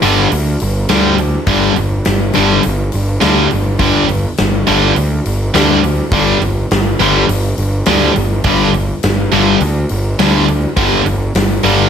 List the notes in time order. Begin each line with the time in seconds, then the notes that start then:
0.02 G1 G2 D3 G3, open hi-hat
0.32 D2, open hi-hat
0.60 G1, open hi-hat
0.89 D2 G2 D3 G3, snare, open hi-hat
1.18 open hi-hat
1.47 G1 G2 D3 G3, kick, open hi-hat
1.76 G1, open hi-hat
2.05 G1, snare, open hi-hat
2.33 G1 G2 D3 G3, open hi-hat
2.63 G1, open hi-hat
2.92 G1, open hi-hat
3.21 D2 G2 D3 G3, snare, open hi-hat
3.51 G1, open hi-hat
3.79 G1 G2 D3 G3, kick, open hi-hat
4.09 open hi-hat
4.38 G1, snare, open hi-hat
4.67 G1 G2 D3 G3, open hi-hat
4.96 D2, open hi-hat
5.26 G1, open hi-hat
5.54 D2 G2 D3 G3, snare, open hi-hat
5.84 open hi-hat
6.12 G1 G2 D3 G3, kick, open hi-hat
6.42 G1, open hi-hat
6.71 G1, snare, open hi-hat
7.00 G1 G2 D3 G3, open hi-hat
7.29 G1, open hi-hat
7.58 G1, open hi-hat
7.86 D2 G2 D3 G3, snare, open hi-hat
8.16 G1, open hi-hat
8.44 G1 G2 D3 G3, kick, open hi-hat
8.74 open hi-hat
9.03 G1, snare, open hi-hat
9.32 G1 G2 D3 G3, open hi-hat
9.60 D2, open hi-hat
9.89 G1, open hi-hat
10.19 D2 G2 D3 G3, snare, open hi-hat
10.48 open hi-hat
10.77 G1 G2 D3 G3, kick, open hi-hat
11.06 G1, open hi-hat
11.35 G1, snare, open hi-hat
11.63 G1 G2 D3 G3, open hi-hat